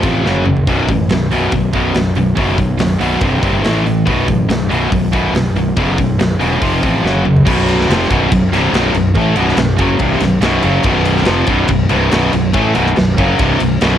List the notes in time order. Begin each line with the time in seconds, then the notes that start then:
0.03 A1 F2 C3 F3, kick, open hi-hat
0.25 F#1 F#2 C#3 F#3, snare
0.36 high tom
0.46 F#2 C#3, mid tom
0.57 floor tom
0.67 B0 B1 F#2 B2, kick, open hi-hat
0.88 A1 B1 F#2, kick, open hi-hat
1.10 B0 B1 F#2, snare, open hi-hat
1.31 B0 B1 F#2 B2, open hi-hat
1.52 B0 B1 F#2, kick, open hi-hat
1.73 B1 F#2 B2, kick, open hi-hat
1.95 B0 B1 F#2, snare, open hi-hat
2.15 B0 B1 F#2, open hi-hat
2.37 F#1 B1 F#2 B2, kick, open hi-hat
2.58 B1 F#2, kick, open hi-hat
2.79 B0 B1 F#2, snare, open hi-hat
3.00 B0 B1 F#2 B2, open hi-hat
3.21 C1 C2 G2 C3, kick, open hi-hat
3.42 G1 C2 G2 C3, kick, open hi-hat
3.63 A1 A2 E3 A3, snare, open hi-hat
3.85 A2 E3, open hi-hat
4.06 B0 B1 F#2 B2, kick, open hi-hat
4.27 A1 B1 F#2, kick, open hi-hat
4.49 B0 B1 F#2, snare, open hi-hat
4.70 B0 B1 F#2 B2, open hi-hat
4.92 B0 B1 F#2, kick, open hi-hat
5.13 B1 F#2 B2, kick, open hi-hat
5.33 B0 B1 F#2, snare, open hi-hat
5.54 B0 B1 F#2, open hi-hat
5.76 F#1 B1 F#2 B2, kick, open hi-hat
5.98 B1 F#2, kick, open hi-hat
6.18 B0 B1 F#2, snare, open hi-hat
6.40 E1 B1 F#2 B2, open hi-hat
6.62 F1 F2 C3 F3, kick, open hi-hat
6.82 A1 F2 C3 F3, kick, open hi-hat
7.04 F#1 F#2 C#3 F#3, snare
7.15 high tom
7.25 F#2 C#3, mid tom
7.37 floor tom
7.46 B0 B1 F#2 B2, kick, crash
7.68 ride
7.81 snare
7.89 F1 F2 C3 F3, snare, ride
8.10 B0 B1 F#2 B2, kick, ride
8.32 B0 B1 F#2, kick, ride
8.52 C1 C2 G2 C3, snare, ride
8.73 B0 B1 F#2 B2, snare, ride
8.94 B0 B1 F#2, ride
9.15 A1 A2 E3 A3, kick, ride
9.36 B0 B1 F#2 B2, ride
9.48 snare
9.57 B0 B1 F#2, snare, ride
9.78 F#1 F#2 C#3 F#3, kick, ride
9.99 C1 C2 G2 C3, kick, ride
10.20 B0 B1 F#2, snare, ride
10.42 B0 B1 F#2 B2, snare, ride
10.63 F#1 F#2 C#3 F#3, ride
10.83 B0 B1 F#2 B2, kick, ride
11.06 ride
11.17 snare
11.25 F1 F2 C3 F3, snare, ride
11.47 B0 B1 F#2 B2, kick, ride
11.68 B0 B1 F#2, kick, ride
11.90 C1 C2 G2 C3, ride
12.11 B0 B1 F#2 B2, snare, ride
12.32 B0 B1 F#2, ride
12.53 A1 A2 E3 A3, kick, ride
12.75 B0 B1 F#2 B2, ride
12.86 snare
12.96 B0 B1 F#2, snare, ride
13.18 F#1 F#2 C#3 F#3, kick, ride
13.39 C1 C2 G2 C3, kick, ride
13.59 B0 B1 F#2, ride
13.81 B0 B1 F#2 B2, snare, ride